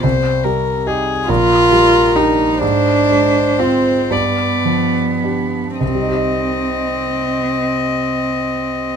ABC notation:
X:1
M:6/8
L:1/16
Q:3/8=38
K:Cm
V:1 name="Violin"
c2 B2 A2 B6 | c6 d3 z3 | e12 |]
V:2 name="Cello"
z6 F4 E2 | D4 C2 =B,6 | C12 |]
V:3 name="Grand piano"
C,,2 G,2 [EG]2 B,,,2 G,2 [DG]2 | A,,2 A,2 [CF]2 G,,2 F,2 [DG]2 | [C,,C,G,EGe]12 |]